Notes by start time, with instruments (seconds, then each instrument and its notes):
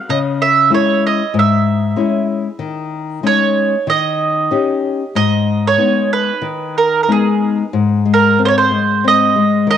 0.09 nylon-string guitar C#3, mandolin D#5
0.42 mandolin E5
0.70 nylon-string guitar G#3 C#4 E4
0.74 mandolin C#5
1.06 mandolin D#5
1.34 nylon-string guitar G#2
1.39 mandolin E5
1.96 nylon-string guitar G#3 C#4 E4
2.59 nylon-string guitar D#3
3.23 nylon-string guitar G#3 C#4 D#4, mandolin C#5
3.87 nylon-string guitar D#3, mandolin D#5
4.51 nylon-string guitar C#4 D#4 G4
5.15 nylon-string guitar G#2, mandolin D#5
5.67 mandolin C#5
5.78 nylon-string guitar G#3 B3 D#4
6.13 mandolin B4
6.42 nylon-string guitar D#3
6.78 mandolin A#4
7.03 mandolin A#4
7.08 nylon-string guitar G#3 B3 D#4, mandolin G#4
7.73 nylon-string guitar G#2
8.06 nylon-string guitar G#3
8.14 mandolin A#4
8.39 nylon-string guitar C4
8.45 mandolin C5 C#5
8.58 mandolin C5
8.71 nylon-string guitar G#3
9.04 nylon-string guitar C4, mandolin D#5
9.36 nylon-string guitar G#3
9.67 nylon-string guitar D#3, mandolin D#5